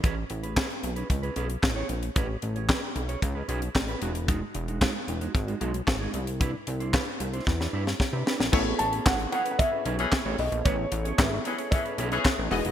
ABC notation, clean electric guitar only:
X:1
M:4/4
L:1/16
Q:1/4=113
K:Alyd
V:1 name="Clean electric guitar"
[CGB] z2 [CGB] [CGB] z2 [CGB] z [CGB] [CGB] z2 [CGc] z2 | [CGB] z2 [CGc] [CGB] z2 [CGc] z [CGB] [CGB] z2 [CGB] [G,DF] z | [G,DF] z2 [G,DF] [G,DF] z2 [G,DF] z [G,DF] [G,DF] z2 [G,DG] z2 | [=DEB] z2 [DE=c] [DEB] z2 [DEc] z [DEB] [DEB] z2 [DEB] [DEB] z |
[CGB] z2 [CGB] [CGB] z2 [CGB] z [CGB] [CGB] z2 [CGc] z2 | [CGB] z2 [CGc] [CGB] z2 [CGc] z [CGB] [CGB] z3 [G,DF] [G,DF] |]